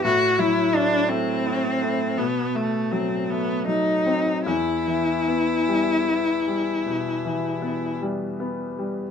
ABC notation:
X:1
M:12/8
L:1/8
Q:3/8=52
K:Em
V:1 name="Cello"
F E D C3 B, A, C B, ^D2 | E8- E z3 |]
V:2 name="Grand piano" clef=bass
A,, F, E A, E A, B,, A, F, A, F, C | E,, E, B, G, B, G, B,, E, B, G, B, G, |]